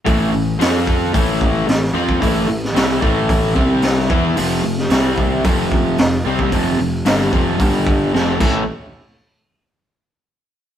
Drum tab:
CC |----------------|----------------|----------------|--------------x-|
HH |o---o---o---o---|o---o---o---o---|o---o---o---o---|o---o---o-------|
SD |----o-------oo--|---oo-------oo--|---oo-------o---|----o-------o---|
BD |o-----o-o-o----o|o-----o-o-o---o-|------o-o-o----o|o-----o-o-o---o-|

CC |----------------|
HH |----------------|
SD |----------------|
BD |----------------|